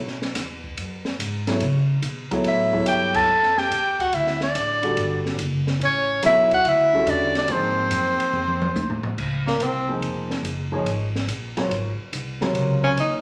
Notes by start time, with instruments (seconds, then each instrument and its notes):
Already playing: upright bass B1
0.08 snare
0.22 snare
0.35 upright bass E2, snare, hi-hat pedal, ride
0.64 kick
0.77 upright bass F#2, ride
1.05 snare
1.19 upright bass G#2, hi-hat pedal, ride
1.47 upright piano F#3 B3 E4 A4 C#5, snare, ride
1.60 upright bass C#3, ride
2.02 upright bass B2, hi-hat pedal, ride
2.31 upright piano F#3 B3 E4 A4 C#5, muted upright bass stroke, kick, ride
2.44 upright bass A2, tenor saxophone E4, soprano saxophone E5, ride
2.73 upright piano F#3 B3 E4 A4 C#5, kick
2.86 upright bass G2, tenor saxophone G4, soprano saxophone G5, hi-hat pedal, ride
3.14 tenor saxophone A4, soprano saxophone A5, kick, crash
3.28 upright bass F#2
3.43 snare
3.58 tenor saxophone G4, soprano saxophone G5, snare
3.70 upright bass E2, hi-hat pedal, ride
3.99 tenor saxophone F#4, soprano saxophone F#5, kick, ride
4.13 upright bass D2, tenor saxophone E4, soprano saxophone E5, ride
4.27 snare
4.41 tenor saxophone D4, soprano saxophone D5, snare
4.55 upright bass A1, hi-hat pedal, ride
4.82 upright piano D3 G3 D4 F#4 A4, ride
4.97 upright bass G1, ride
5.26 snare
5.39 upright bass F#1, hi-hat pedal, ride
5.67 snare
5.80 upright bass A1, tenor saxophone C#4, ride
5.85 soprano saxophone C#5
6.23 upright bass B1, upright piano F#3 B3 E4 A4 C#5, tenor saxophone E4, soprano saxophone E5, snare, hi-hat pedal, ride
6.51 tenor saxophone F#4, soprano saxophone F#5, kick, ride
6.65 upright bass D2, tenor saxophone E4, soprano saxophone E5, ride
6.93 upright piano D3 G3 C#4 F#4 A4, kick
7.06 upright bass E2, tenor saxophone D4, soprano saxophone D5, hi-hat pedal, ride
7.35 tenor saxophone D4, soprano saxophone D5, snare, ride
7.48 upright bass G#2, upright piano F3 A#3 D#4 G#4 C5, tenor saxophone C4, soprano saxophone C5, ride
7.90 upright bass F#2, hi-hat pedal, ride
8.19 muted upright bass stroke, ride
8.33 upright bass F2, mid tom
8.48 mid tom
8.62 mid tom
8.74 upright bass D#2, hi-hat pedal, high tom
8.90 floor tom
9.03 muted upright bass stroke, floor tom
9.18 upright bass C#2, kick, crash
9.47 tenor saxophone A#3, snare
9.58 upright bass C2, hi-hat pedal, ride
9.62 tenor saxophone C4
9.88 upright piano F3 A#3 D#4 G#4 C5
10.01 upright bass F1, ride
10.31 snare
10.43 upright bass F#1, hi-hat pedal, ride
10.72 upright piano F3 A#3 D#4 G#4 C#5
10.85 upright bass G#1, ride
11.16 snare
11.27 upright bass A#1, hi-hat pedal, ride
11.57 upright piano F#3 C4 F4 A#4 C#5, snare, ride
11.70 upright bass G#1, ride
11.99 muted upright bass stroke
12.13 upright bass C2, hi-hat pedal, ride
12.41 upright piano C3 F#3 F4 A#4 C#5, snare
12.55 upright bass C#2, ride
12.84 tenor saxophone C#4
12.97 upright bass D#2, tenor saxophone D#4, hi-hat pedal, ride